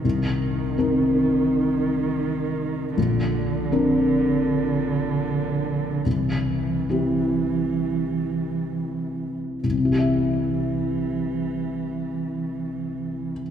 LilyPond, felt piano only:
\new Staff \with { instrumentName = "Felt piano" } { \time 4/4 \key bes \mixolydian \tempo 4 = 74 c,4 <c' ees' bes'>2. | bes,,4 <c' d' bes'>2. | c,4 <c' e' g'>2. | <c, c c' e' g' e''>1 | }